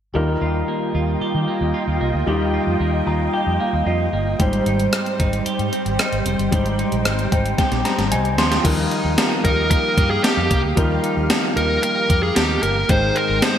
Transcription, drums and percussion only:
4.40 kick loud
4.40 closed hi-hat medium
4.53 closed hi-hat soft
4.66 closed hi-hat medium
4.80 closed hi-hat soft
4.93 cross-stick loud
4.93 closed hi-hat loud
5.06 closed hi-hat soft
5.20 kick medium
5.20 closed hi-hat medium
5.33 closed hi-hat medium
5.46 closed hi-hat medium
5.59 closed hi-hat soft
5.73 closed hi-hat medium
5.86 closed hi-hat soft
5.99 cross-stick loud
5.99 closed hi-hat medium
6.13 closed hi-hat soft
6.26 closed hi-hat medium
6.39 closed hi-hat soft
6.52 kick loud
6.52 closed hi-hat medium
6.66 closed hi-hat medium
6.79 closed hi-hat medium
6.92 closed hi-hat medium
7.05 cross-stick loud
7.05 closed hi-hat loud
7.19 closed hi-hat soft
7.32 kick medium
7.32 closed hi-hat medium
7.46 closed hi-hat soft
7.58 kick medium
7.58 snare soft
7.58 closed hi-hat medium
7.72 snare soft
7.72 closed hi-hat soft
7.85 snare medium
7.85 closed hi-hat medium
7.99 snare medium
7.99 closed hi-hat soft
8.12 closed hi-hat medium
8.25 closed hi-hat soft
8.38 snare medium
8.38 closed hi-hat medium
8.52 snare medium
8.52 closed hi-hat soft
8.65 kick loud
8.65 closed hi-hat medium
8.65 crash medium
8.91 closed hi-hat medium
9.18 snare loud
9.18 closed hi-hat loud
9.45 kick medium
9.45 closed hi-hat medium
9.71 kick medium
9.71 closed hi-hat medium
9.97 kick medium
9.97 closed hi-hat medium
10.24 snare loud
10.24 closed hi-hat medium
10.51 kick medium
10.51 closed hi-hat medium
10.77 kick loud
10.77 closed hi-hat medium
11.04 closed hi-hat medium
11.30 snare loud
11.30 closed hi-hat loud
11.57 closed hi-hat medium
11.83 closed hi-hat medium
12.10 kick medium
12.10 closed hi-hat medium
12.36 snare loud
12.36 closed hi-hat medium
12.63 closed hi-hat medium
12.89 kick loud
12.89 closed hi-hat medium
13.16 closed hi-hat medium
13.42 snare loud
13.42 closed hi-hat loud

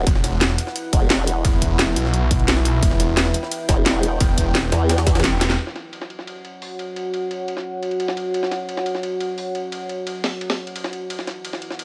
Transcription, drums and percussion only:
0.07 kick loud
0.07 closed hi-hat medium
0.07 ride medium
0.15 snare soft
0.24 snare soft
0.24 closed hi-hat medium
0.24 ride medium
0.41 snare loud
0.41 closed hi-hat medium
0.41 ride medium
0.50 snare medium
0.58 closed hi-hat medium
0.58 ride medium
0.67 snare soft
0.76 closed hi-hat medium
0.76 ride medium
0.93 kick loud
0.93 closed hi-hat medium
0.93 ride medium
1.10 snare loud
1.10 closed hi-hat medium
1.10 open hi-hat medium
1.27 closed hi-hat medium
1.27 ride medium
1.45 kick loud
1.45 closed hi-hat medium
1.45 ride medium
1.62 kick medium
1.62 closed hi-hat medium
1.62 ride medium
1.79 snare loud
1.79 closed hi-hat medium
1.79 ride medium
1.96 closed hi-hat medium
1.96 ride medium
2.05 snare soft
2.14 closed hi-hat medium
2.31 kick loud
2.31 closed hi-hat medium
2.31 ride medium
2.39 ride soft
2.48 snare loud
2.48 closed hi-hat medium
2.48 ride loud
2.57 snare medium
2.65 closed hi-hat medium
2.65 ride medium
2.83 kick loud
2.83 closed hi-hat medium
2.83 ride medium
2.91 snare soft
3.00 snare soft
3.00 closed hi-hat medium
3.00 ride medium
3.17 snare loud
3.17 closed hi-hat medium
3.17 ride medium
3.26 snare medium
3.34 closed hi-hat medium
3.34 ride medium
3.43 snare soft
3.51 closed hi-hat medium
3.51 ride medium
3.69 kick loud
3.69 snare loud
3.69 closed hi-hat medium
3.69 ride medium
3.86 snare loud
3.86 closed hi-hat medium
3.86 ride medium
4.03 closed hi-hat medium
4.03 ride medium
4.20 kick loud
4.20 closed hi-hat medium
4.20 ride medium
4.38 kick medium
4.38 closed hi-hat loud
4.38 ride medium
4.55 snare loud
4.55 closed hi-hat medium
4.55 ride medium
4.72 snare loud
4.72 closed hi-hat medium
4.72 ride medium
4.89 snare loud
4.89 closed hi-hat medium
4.89 ride medium
4.98 snare loud
4.98 ride medium
5.07 kick loud
5.07 snare loud
5.07 closed hi-hat medium
5.07 ride medium
5.15 snare medium
5.15 ride medium
5.20 snare medium
5.20 ride medium
5.24 snare loud
5.24 snare soft
5.24 closed hi-hat medium
5.24 ride medium
5.41 snare medium
5.41 snare loud
5.41 closed hi-hat loud
5.41 ride medium
5.50 snare medium
5.50 snare soft
5.58 ride medium
5.67 snare soft
5.76 snare soft
5.76 ride medium
5.93 ride medium
6.01 snare soft
6.10 ride medium
6.19 snare soft
6.27 ride medium
6.45 ride medium
6.62 open hi-hat medium
6.79 ride medium
6.96 ride medium
7.14 ride medium
7.31 ride medium
7.48 ride medium
7.57 snare soft
7.83 ride medium
7.91 ride soft
8.00 ride medium
8.08 snare medium
8.17 ride medium
8.34 ride medium
8.43 snare soft
8.51 snare soft
8.51 ride medium
8.69 ride medium
8.77 snare soft
8.86 ride medium
8.95 snare soft
9.03 ride medium
9.20 ride medium
9.38 open hi-hat medium
9.55 ride medium
9.72 ride medium
9.89 ride medium
10.07 ride medium
10.24 snare loud
10.24 open hi-hat medium
10.41 ride medium
10.50 snare loud
10.50 open hi-hat medium
10.67 ride medium
10.76 ride medium
10.84 snare medium
10.93 ride medium
11.10 ride medium
11.19 snare soft
11.27 snare soft
11.27 ride medium
11.45 ride medium
11.53 snare soft
11.62 ride medium
11.70 snare soft
11.79 ride medium

